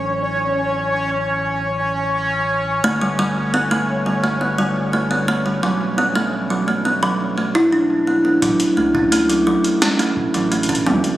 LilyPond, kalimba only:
\new Staff \with { instrumentName = "Kalimba" } { \time 4/4 \key a \mixolydian \tempo 4 = 86 r1 | a16 g16 g16 r16 b16 a16 r16 g16 a16 b16 g16 r16 a16 b16 a16 g16 | fis16 r16 b16 a16 r16 fis16 a16 b16 fis16 r16 a16 e'16 d'16 r16 b16 b16 | fis16 r16 a16 cis'16 a16 fis16 fis16 r16 cis'16 a16 r16 fis16 a16 cis'16 fis16 r16 | }